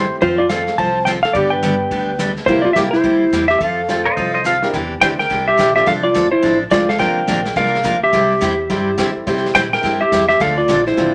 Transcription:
Already playing: G1 G3 A3 C4 E4 G4 C5
0.21 F2 F3 C4 F4 A4 C5, brush sweep, kick
0.38 F4 D5
0.49 F3 A3 C4 F4 A4 F5, snare, hi-hat pedal
0.67 snare
0.78 C2 F3 C4 F4 A4 C5 A5, brush sweep, kick
1.05 F3 C4 F4 A4 C5 G5, snare, hi-hat pedal
1.23 A4 F5, snare
1.33 G2 D3 G3 B3 D4 G4 B4 D5, brush sweep, kick
1.50 B4 G5
1.62 D3 G3 B3 D4 G4, snare, hi-hat pedal
1.91 D2 D3 G3 B3 D4 G4, brush sweep, kick
2.19 D3 G3 B3 D4 G4, snare, hi-hat pedal
2.36 snare
2.46 C2 C3 G3 A#3 C4 E4 G4 A#4 C5, brush sweep, kick
2.62 F4 D5
2.73 C2 C3 G3 A#3 C4 E4 G4 A#4 E5, snare, hi-hat pedal
2.91 E4 C5, snare
3.04 D2 C3 G3 A#3 E4 G4, brush sweep, kick
3.32 E2 C3 G3 A#3 E4 G4, snare, hi-hat pedal
3.48 G4 E5, snare
3.59 F2 F3 C4 F4 A4 F5, brush sweep, kick
3.88 F3 A3 C4 F4 A4 C5, snare, hi-hat pedal
4.05 C5 D#5
4.16 C2 F3 C4 F4 A4 C5 D#5, brush sweep, kick
4.34 C5 D#5
4.44 F3 C4 F4 A4 F5, snare, hi-hat pedal
4.62 C4 D4 E4 G4 A#4, snare
4.73 E2 C3 E3 D4 G4, brush sweep, kick, snare
5.01 D2 C3 E3 C4 D4 E4 G4 C5 G5, kick, snare, hi-hat pedal
5.19 A#4 G5, snare
5.30 C2 C3 E3 D4 G4, brush sweep, kick, snare
5.48 G4 E5
5.58 A#1 C3 E3 D4 G4, kick, snare, hi-hat pedal
5.76 C4 D4 F4 G4 A4 D5 E5, snare
5.86 C2 F3 C4 D4 A4 F5, brush sweep, kick, snare
6.03 F4 D5
6.14 D2 F3 C4 D4 A4, kick, snare, hi-hat pedal
6.32 E4 C5
6.42 A1 F3 C4 D4 A4, brush sweep, kick, snare
6.70 C#2 F3 C4 D4 F4 A4 C5 D5, kick, snare, hi-hat pedal
6.89 A4 F5, snare
6.98 D2 C3 F3 A#3 C4 D4 F4 A#4 C5 G5, brush sweep, kick, snare
7.27 A#1 C3 F3 A#3 D4 A#4, kick, snare, hi-hat pedal
7.45 snare
7.56 C2 C3 F3 A#3 D4 A#4 F5, brush sweep, kick, snare
7.66 snare
7.75 snare
7.83 D2 C3 F3 A#3 D4 A#4, kick, snare, hi-hat pedal
8.03 G4 E5
8.13 C2 C3 G3 C4 E4 G4, brush sweep, kick, snare
8.41 E2 C3 G3 C4 E4 G4, kick, snare, hi-hat pedal
8.70 G2 C3 G3 C4 E4 G4 C5, brush sweep, kick, snare
8.97 C3 D3 G3 C4 E4 G4 A4, kick, snare, hi-hat pedal
9.16 muted upright bass stroke
9.27 C3 G3 C4 E4 G4 C5, brush sweep, kick, snare
9.37 snare
9.46 snare
9.55 A#2 C3 G3 C4 E4 G4 C5 G5, kick, snare, hi-hat pedal
9.73 A#4 G5, snare
9.83 G2 C3 G3 C4 E4 G4, brush sweep, kick, snare
10.01 G4 E5, muted upright bass stroke
10.12 E2 C3 G3 C4 E4 G4, kick, snare, hi-hat pedal
10.29 G4 E5, snare
10.40 D2 D3 F3 C4 D4 A4 F5, brush sweep, kick, snare
10.58 F4 D5
10.68 A#1 D3 F3 C4 D4 A4, kick, snare, hi-hat pedal
10.86 E4 C5, snare
10.96 A1 D3 F3 A3 C4 D4 F4 A4, brush sweep, kick, snare

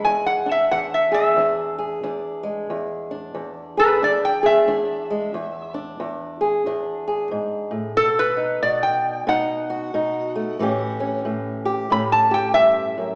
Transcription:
Already playing: G#3 G#4
0.05 E2 G#5
0.26 F#5
0.46 D4
0.51 E5
0.71 E2 F#5
0.94 E5
1.12 G#4 E5
1.37 E2 D4
1.78 G#4
2.03 E2 D4
2.43 G#3
2.70 E2
3.11 D4
3.34 E2
3.77 G#4 B4
4.02 E2 D4 D5
4.25 G5
4.43 G#4 E5
4.67 E2 D4
5.10 G#3
5.34 E2
5.74 D4
6.00 E2
6.41 G#4
6.66 E2 D4
7.08 G#4
7.31 G#2
7.71 A2
7.97 B2 A4
8.19 B4
8.37 D#4
8.63 B2 D5
8.83 G5
9.27 B2 D#4 F#5
9.70 F#4
9.94 B2 D#4
10.35 A3
10.59 A2 E3 C#4 G4
11.00 C#4
11.25 A2
11.65 G4
11.90 A2 C#4 B5
12.12 A5
12.31 G4 G5
12.54 G2 E5
12.97 F#2

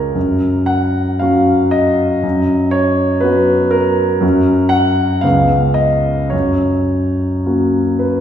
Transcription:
Already playing: G#3 C#4 F4 A#4
0.15 F#2
0.66 F#5
1.19 F#3 C#4 F#4 F5
1.71 D#5
2.23 F#2
2.71 C#5
3.20 F#3 B3 F#4 B4
3.71 A#4
4.21 F#2 F#3 C#4 F#4
4.69 F#5
5.21 C#2 B3 C#4 G#4 F5
5.74 D#5
6.30 F#2 C#5
7.46 A#3 C#4 F#4
7.99 B4

